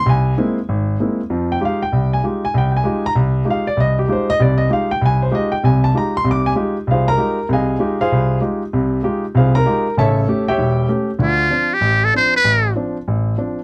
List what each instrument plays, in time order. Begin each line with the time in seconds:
0.06 grand piano C2 G#5
0.37 grand piano G#3 A#3 C4 E4
0.69 grand piano G#1
1.00 grand piano G#3 A#3 C4 E4
1.30 grand piano F2 F3
1.52 grand piano G5
1.61 grand piano G#3 D#4 F4 G4
1.65 grand piano F5
1.82 grand piano G5
1.92 grand piano C2
2.13 grand piano G#5
2.24 grand piano G#3 D#4 F4 G4
2.45 grand piano G#5
2.54 grand piano C2 G5
2.77 grand piano G#5
2.84 grand piano G#3 D#4 F4 G4
3.06 grand piano A#5
3.15 grand piano C2
3.45 grand piano G#3 D#4 F4 G4
3.50 grand piano F5
3.67 grand piano D5
3.77 grand piano C2 D#5
3.99 grand piano G4
4.08 grand piano G#3 D#4 F4 G4
4.12 grand piano C5
4.30 grand piano D#5
4.40 grand piano C2 C3 D5
4.58 grand piano D#5
4.70 grand piano G#3 D#4 F4 G4 F5
4.91 grand piano G5
5.01 grand piano C2
5.06 grand piano G#5
5.22 grand piano C5
5.31 grand piano G#3 D#4 F4 G4 D#5
5.52 grand piano G5
5.64 grand piano C2 C3 G#5
5.84 grand piano A5
5.94 grand piano G#3 D#4 F4 G4 A#5
6.17 grand piano C6
6.24 grand piano C2 C3
6.31 grand piano D6
6.46 grand piano G#5
6.55 grand piano G#3 D#4 F4 G4
6.87 grand piano C2 F5
6.92 grand piano F4 G#4 C5
7.08 grand piano A#4 A#5
7.17 grand piano G#3 D#4 F4 G4
7.49 grand piano C2 C3 G#4 D#5 G#5
7.53 grand piano F5
7.79 grand piano G#3 D#4 F4 G4
8.01 grand piano F4 G#4 C5 F5
8.12 grand piano C2
8.41 grand piano G#3 D#4 F4 G4
8.73 grand piano C2 C3
9.03 grand piano G#3 D#4 F4 G4
9.35 grand piano C2 C3 F4 G#4 C5 F5
9.55 grand piano A#4 A#5
9.66 grand piano G#3 D#4 F4 G4
9.97 grand piano A1 C#3 A4 C#5 E5 A5
10.28 grand piano A3 C#4 G4
10.48 grand piano G4 C#5 E5 G5
10.58 grand piano E1
10.89 grand piano A3 C#4 G4
11.19 grand piano D2 D3, muted trumpet F4
11.50 grand piano F3 C4 D4
11.74 muted trumpet G4
11.81 grand piano A1
12.05 muted trumpet A4
12.13 grand piano F3 C4 D4, muted trumpet C5
12.37 muted trumpet B4
12.44 grand piano A1
12.76 grand piano F3 C4 D4
13.08 grand piano A1
13.38 grand piano F3 C4 D4